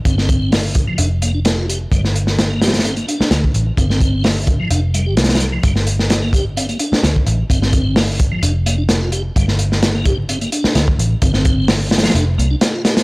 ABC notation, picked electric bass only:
X:1
M:4/4
L:1/8
Q:1/4=129
K:Gm
V:1 name="Picked electric bass" clef=bass
G,,,4 F,,,4 | G,,,4- G,,, z D,, A,,, | G,,,4 F,,,2 C,,2 | G,,,4- G,,, z D,, A,,, |
G,,,4 F,,,4 | G,,,4- G,,, z D,, A,,, | G,,,4 F,,, C,, z2 |]